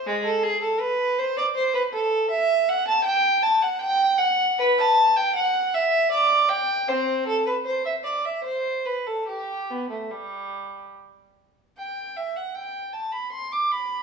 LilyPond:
\new Staff \with { instrumentName = "Violin" } { \time 3/4 \key a \minor \tempo 4 = 78 aes16 a'16 aes'16 a'16 b'8 c''16 d''16 c''16 b'16 a'8 | \key g \major e''8 fis''16 a''16 g''8 a''16 fis''16 g''8 fis''8 | b'16 a''8 g''16 fis''8 e''8 d''8 g''8 | <c' c''>8 a'16 b'16 c''16 e''16 d''16 e''16 c''8 b'16 a'16 |
g'8 b16 a16 g4 r4 | g''8 e''16 fis''16 g''8 a''16 b''16 c'''16 d'''16 b''8 | }